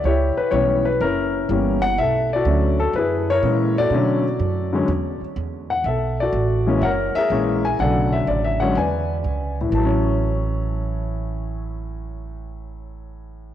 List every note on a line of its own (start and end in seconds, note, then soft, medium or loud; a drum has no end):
0.04 0.35 C#2 medium
0.04 0.98 E4 medium
0.04 0.98 G4 medium
0.04 0.36 C#5 medium
0.37 0.53 B4 medium
0.37 muted upright bass stroke soft
0.51 0.99 B1 medium
0.51 0.82 E3 medium
0.51 0.82 G3 medium
0.51 0.83 B3 medium
0.51 0.83 C#4 medium
0.51 0.86 C#5 medium
0.85 1.01 B4 medium
1.01 1.48 F#1 medium
1.01 1.50 C#4 medium
1.01 1.95 E4 medium
1.01 1.79 A#4 medium
1.49 1.96 G1 medium
1.49 1.79 E3 medium
1.49 1.80 G3 medium
1.49 1.80 A#3 medium
1.49 1.80 C#4 medium
1.82 1.98 F#5 loud
1.98 2.45 B1 medium
1.98 2.34 A4 medium
1.98 2.29 E5 loud
2.33 2.93 F#4 medium
2.33 2.78 A4 medium
2.33 2.77 D5 medium
2.45 2.93 D2 medium
2.45 2.76 D3 medium
2.45 2.77 F#3 medium
2.45 2.77 A3 soft
2.45 2.77 C#4 medium
2.80 2.94 A4 medium
2.93 3.41 F#2 medium
2.93 3.30 B4 medium
2.98 3.30 E4 medium
2.98 3.89 G#4 medium
3.30 3.89 E4 medium
3.30 3.89 A#4 medium
3.30 3.79 C#5 loud
3.43 3.90 A#2 medium
3.43 3.73 E3 medium
3.43 3.73 G#3 medium
3.43 3.74 A#3 medium
3.43 3.74 C#4 medium
3.78 5.20 F#4 medium
3.78 4.86 A4 medium
3.78 5.19 D5 loud
3.90 4.38 B2 medium
3.90 4.22 D3 medium
3.90 4.23 F#3 medium
3.90 4.22 A3 medium
3.94 4.23 C#4 medium
4.40 4.87 F#2 medium
4.73 4.87 D3 medium
4.73 4.87 F#3 medium
4.73 4.87 G#3 medium
4.73 4.88 C#4 medium
4.88 5.19 E2 medium
5.21 muted upright bass stroke soft
5.36 5.84 E2 medium
5.70 5.84 F#5 medium
5.84 6.32 B1 medium
5.84 6.17 E5 medium
5.88 6.20 A4 medium
6.20 6.80 F#4 medium
6.20 6.80 A4 medium
6.20 6.81 D5 medium
6.33 6.80 A1 medium
6.67 6.80 E3 medium
6.67 6.81 G#3 medium
6.67 6.81 A#3 medium
6.67 6.81 C#4 medium
6.79 7.13 F#1 medium
6.79 6.83 E5 medium
6.79 6.90 F#5 medium
6.85 7.16 A#4 medium
6.85 7.77 C#5 medium
7.15 7.77 G#4 medium
7.15 7.76 A#4 medium
7.15 7.65 E5 loud
7.15 muted upright bass stroke soft
7.30 7.77 A#1 medium
7.30 7.61 E3 medium
7.30 7.61 G#3 medium
7.30 7.61 A#3 medium
7.30 7.61 C#4 medium
7.65 7.80 G#5 medium
7.79 8.26 B1 medium
7.79 8.56 C#3 medium
7.79 8.55 D3 medium
7.79 8.55 F#3 medium
7.79 8.55 A3 medium
7.79 8.73 A4 medium
7.79 8.27 D5 medium
7.79 8.14 F#5 medium
8.12 8.27 E5 medium
8.27 8.75 A1 medium
8.27 8.45 D5 medium
8.44 8.59 E5 medium
8.60 8.75 D3 medium
8.60 8.75 F#3 medium
8.60 8.75 G#3 medium
8.60 8.75 C#4 medium
8.60 8.75 F#5 medium
8.75 9.23 E2 medium
8.75 9.70 B4 medium
8.75 9.70 D5 medium
8.75 9.55 G#5 medium
9.24 9.71 C#2 medium
9.61 13.54 A2 medium
9.69 13.54 A1 medium
9.69 13.54 E3 medium
9.75 13.54 F#3 medium
9.75 13.54 A5 medium
9.85 13.54 C#4 medium